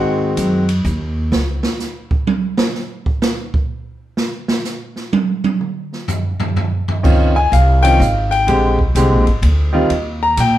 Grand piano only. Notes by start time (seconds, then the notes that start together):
Already playing: D#3 G#3 C4 F#4 F#5
7.03 D#3 C4 C#4 F4
7.36 G#5
7.53 F5
7.83 D#3 C4 C#4 F4 G5
8.01 F5
8.31 G5
8.47 D3 G#3 C4 G4
8.96 D3 G#3 C4 G4
9.73 D#3 G3 C4 F4
10.23 A#5
10.40 G5